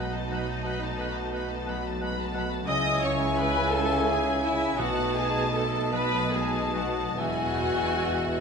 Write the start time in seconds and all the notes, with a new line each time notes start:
Already playing: B1 B2 F#3 G#3 A3 B3 D#4 F#4 A4 B4 D#5 F#5 B5
0.15 A5
0.30 B2 F#3 F#5 A5 B5
0.49 A5
0.63 B2 B3 F#5 A5 B5
0.82 A5
0.98 B2 A4 F#5 A5 B5
1.15 A5
1.30 B2 B3 F#5 A5
1.34 B5
1.52 A5
1.66 B2 F#3 F#5 A5
1.70 B5
1.87 A5
2.01 B2 G#3 F#5 A5 B5
2.21 A5
2.34 B2 F#3 F#5 A5 B5
2.53 A5
2.67 C#2 C#3 G#3 E4 D#5 E5 G#5 D#6
3.02 G#4 C#5 C#6
3.37 G#3 B4 B5
3.72 C#4 A4 A5
4.06 D#4 G#4 G#5
4.42 C#4 E4 E5
4.78 B1 B2 A3 D#4 F#4 D#5 F#5 A5
5.15 G#4 A4 G#5
5.53 B3 A4 A5
5.92 B2 F#3 A3 D#4 B4 D#5 A5 B5
6.33 G#3 G#4 G#5
6.75 F#3 F#4 F#5
7.17 E1 E2 B2 E3 G#3 E4 F#4 E5 F#5 G#5
7.27 E2
7.46 E2
7.55 E2
7.61 E2 B4
7.72 E2
7.81 E2
7.91 E2
7.99 E2
8.05 E2 E4
8.18 E2
8.27 E2
8.36 E2